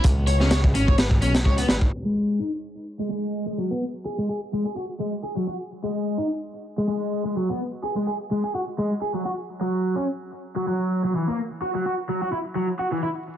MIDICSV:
0, 0, Header, 1, 4, 480
1, 0, Start_track
1, 0, Tempo, 472441
1, 41, Time_signature, 4, 2, 24, 8
1, 13586, End_track
2, 0, Start_track
2, 0, Title_t, "Overdriven electric guitar"
2, 0, Program_c, 0, 29
2, 282, Note_on_c, 0, 73, 105
2, 361, Note_off_c, 0, 73, 0
2, 410, Note_on_c, 0, 61, 83
2, 510, Note_off_c, 0, 61, 0
2, 518, Note_on_c, 0, 73, 85
2, 599, Note_off_c, 0, 73, 0
2, 761, Note_on_c, 0, 61, 76
2, 877, Note_off_c, 0, 61, 0
2, 889, Note_on_c, 0, 73, 98
2, 959, Note_off_c, 0, 73, 0
2, 1001, Note_on_c, 0, 71, 88
2, 1049, Note_off_c, 0, 71, 0
2, 1242, Note_on_c, 0, 61, 81
2, 1361, Note_off_c, 0, 61, 0
2, 1481, Note_on_c, 0, 73, 84
2, 1560, Note_off_c, 0, 73, 0
2, 1611, Note_on_c, 0, 59, 81
2, 1679, Note_off_c, 0, 59, 0
2, 1722, Note_on_c, 0, 71, 102
2, 1769, Note_off_c, 0, 71, 0
2, 2087, Note_on_c, 0, 56, 62
2, 2429, Note_off_c, 0, 56, 0
2, 2435, Note_on_c, 0, 63, 70
2, 2518, Note_off_c, 0, 63, 0
2, 3045, Note_on_c, 0, 56, 65
2, 3144, Note_off_c, 0, 56, 0
2, 3156, Note_on_c, 0, 56, 67
2, 3511, Note_off_c, 0, 56, 0
2, 3524, Note_on_c, 0, 56, 70
2, 3627, Note_off_c, 0, 56, 0
2, 3637, Note_on_c, 0, 54, 65
2, 3759, Note_off_c, 0, 54, 0
2, 3767, Note_on_c, 0, 59, 65
2, 3872, Note_off_c, 0, 59, 0
2, 4118, Note_on_c, 0, 68, 89
2, 4200, Note_off_c, 0, 68, 0
2, 4249, Note_on_c, 0, 56, 70
2, 4350, Note_off_c, 0, 56, 0
2, 4360, Note_on_c, 0, 68, 70
2, 4440, Note_off_c, 0, 68, 0
2, 4603, Note_on_c, 0, 56, 67
2, 4718, Note_off_c, 0, 56, 0
2, 4727, Note_on_c, 0, 68, 87
2, 4798, Note_off_c, 0, 68, 0
2, 4840, Note_on_c, 0, 66, 74
2, 4888, Note_off_c, 0, 66, 0
2, 5081, Note_on_c, 0, 56, 72
2, 5201, Note_off_c, 0, 56, 0
2, 5323, Note_on_c, 0, 68, 73
2, 5402, Note_off_c, 0, 68, 0
2, 5450, Note_on_c, 0, 54, 70
2, 5519, Note_off_c, 0, 54, 0
2, 5560, Note_on_c, 0, 66, 84
2, 5609, Note_off_c, 0, 66, 0
2, 5928, Note_on_c, 0, 56, 69
2, 6269, Note_off_c, 0, 56, 0
2, 6278, Note_on_c, 0, 63, 73
2, 6359, Note_off_c, 0, 63, 0
2, 6888, Note_on_c, 0, 56, 66
2, 6985, Note_off_c, 0, 56, 0
2, 6997, Note_on_c, 0, 56, 70
2, 7355, Note_off_c, 0, 56, 0
2, 7369, Note_on_c, 0, 56, 73
2, 7470, Note_off_c, 0, 56, 0
2, 7483, Note_on_c, 0, 54, 66
2, 7601, Note_off_c, 0, 54, 0
2, 7614, Note_on_c, 0, 59, 68
2, 7716, Note_off_c, 0, 59, 0
2, 7961, Note_on_c, 0, 68, 92
2, 8041, Note_off_c, 0, 68, 0
2, 8090, Note_on_c, 0, 56, 73
2, 8190, Note_off_c, 0, 56, 0
2, 8201, Note_on_c, 0, 68, 75
2, 8281, Note_off_c, 0, 68, 0
2, 8444, Note_on_c, 0, 56, 65
2, 8558, Note_off_c, 0, 56, 0
2, 8572, Note_on_c, 0, 68, 94
2, 8640, Note_off_c, 0, 68, 0
2, 8682, Note_on_c, 0, 66, 73
2, 8729, Note_off_c, 0, 66, 0
2, 8924, Note_on_c, 0, 56, 70
2, 9042, Note_off_c, 0, 56, 0
2, 9162, Note_on_c, 0, 68, 71
2, 9241, Note_off_c, 0, 68, 0
2, 9290, Note_on_c, 0, 54, 70
2, 9359, Note_off_c, 0, 54, 0
2, 9400, Note_on_c, 0, 66, 86
2, 9449, Note_off_c, 0, 66, 0
2, 9766, Note_on_c, 0, 54, 69
2, 10108, Note_off_c, 0, 54, 0
2, 10117, Note_on_c, 0, 61, 74
2, 10199, Note_off_c, 0, 61, 0
2, 10729, Note_on_c, 0, 54, 70
2, 10829, Note_off_c, 0, 54, 0
2, 10841, Note_on_c, 0, 54, 69
2, 11197, Note_off_c, 0, 54, 0
2, 11214, Note_on_c, 0, 54, 74
2, 11312, Note_off_c, 0, 54, 0
2, 11325, Note_on_c, 0, 52, 66
2, 11442, Note_off_c, 0, 52, 0
2, 11453, Note_on_c, 0, 58, 65
2, 11555, Note_off_c, 0, 58, 0
2, 11802, Note_on_c, 0, 66, 91
2, 11881, Note_off_c, 0, 66, 0
2, 11934, Note_on_c, 0, 54, 72
2, 12032, Note_off_c, 0, 54, 0
2, 12045, Note_on_c, 0, 66, 76
2, 12123, Note_off_c, 0, 66, 0
2, 12283, Note_on_c, 0, 54, 66
2, 12397, Note_off_c, 0, 54, 0
2, 12410, Note_on_c, 0, 66, 91
2, 12479, Note_off_c, 0, 66, 0
2, 12520, Note_on_c, 0, 64, 72
2, 12568, Note_off_c, 0, 64, 0
2, 12757, Note_on_c, 0, 54, 72
2, 12879, Note_off_c, 0, 54, 0
2, 12998, Note_on_c, 0, 66, 76
2, 13079, Note_off_c, 0, 66, 0
2, 13129, Note_on_c, 0, 52, 71
2, 13199, Note_off_c, 0, 52, 0
2, 13239, Note_on_c, 0, 64, 91
2, 13288, Note_off_c, 0, 64, 0
2, 13586, End_track
3, 0, Start_track
3, 0, Title_t, "Analog synth bass"
3, 0, Program_c, 1, 38
3, 45, Note_on_c, 1, 37, 106
3, 759, Note_on_c, 1, 32, 88
3, 774, Note_off_c, 1, 37, 0
3, 1241, Note_on_c, 1, 35, 92
3, 1256, Note_off_c, 1, 32, 0
3, 1470, Note_off_c, 1, 35, 0
3, 1476, Note_on_c, 1, 37, 86
3, 1666, Note_off_c, 1, 37, 0
3, 1720, Note_on_c, 1, 32, 85
3, 1908, Note_off_c, 1, 32, 0
3, 13586, End_track
4, 0, Start_track
4, 0, Title_t, "Drums"
4, 38, Note_on_c, 9, 42, 84
4, 45, Note_on_c, 9, 36, 106
4, 140, Note_off_c, 9, 42, 0
4, 147, Note_off_c, 9, 36, 0
4, 277, Note_on_c, 9, 42, 63
4, 378, Note_off_c, 9, 42, 0
4, 410, Note_on_c, 9, 38, 39
4, 512, Note_off_c, 9, 38, 0
4, 516, Note_on_c, 9, 42, 88
4, 517, Note_on_c, 9, 38, 120
4, 617, Note_off_c, 9, 42, 0
4, 619, Note_off_c, 9, 38, 0
4, 649, Note_on_c, 9, 36, 105
4, 751, Note_off_c, 9, 36, 0
4, 760, Note_on_c, 9, 42, 68
4, 861, Note_off_c, 9, 42, 0
4, 896, Note_on_c, 9, 36, 88
4, 996, Note_on_c, 9, 42, 75
4, 998, Note_off_c, 9, 36, 0
4, 1000, Note_on_c, 9, 38, 110
4, 1098, Note_off_c, 9, 42, 0
4, 1101, Note_off_c, 9, 38, 0
4, 1126, Note_on_c, 9, 36, 89
4, 1228, Note_off_c, 9, 36, 0
4, 1238, Note_on_c, 9, 42, 62
4, 1340, Note_off_c, 9, 42, 0
4, 1367, Note_on_c, 9, 38, 112
4, 1367, Note_on_c, 9, 42, 81
4, 1469, Note_off_c, 9, 38, 0
4, 1469, Note_off_c, 9, 42, 0
4, 1476, Note_on_c, 9, 36, 85
4, 1578, Note_off_c, 9, 36, 0
4, 1604, Note_on_c, 9, 42, 67
4, 1706, Note_off_c, 9, 42, 0
4, 1713, Note_on_c, 9, 38, 98
4, 1721, Note_on_c, 9, 42, 76
4, 1815, Note_off_c, 9, 38, 0
4, 1823, Note_off_c, 9, 42, 0
4, 1843, Note_on_c, 9, 36, 88
4, 1945, Note_off_c, 9, 36, 0
4, 13586, End_track
0, 0, End_of_file